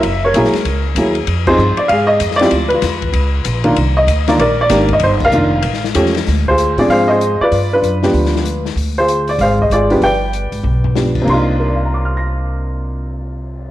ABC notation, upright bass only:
X:1
M:4/4
L:1/8
Q:"Swing" 1/4=192
K:Cm
V:1 name="Upright bass" clef=bass
^F,,,2 ^A,,, z ^C,,2 E,,2 | F,,2 G,, z A,,2 F,,2 | D,,2 =E,,2 _D,,2 B,,,2 | C,,2 D,,2 B,,,2 A,,,2 |
G,,,2 F,,,2 =A,,,2 =E,,2 | D,,3 =A,, _A,,3 z | G,,2 ^F,,2 D,,4 | D,,4 A,,,2 A,,,2 |
G,,,3 A,,, =B,,,4 | C,,8- | C,,8 |]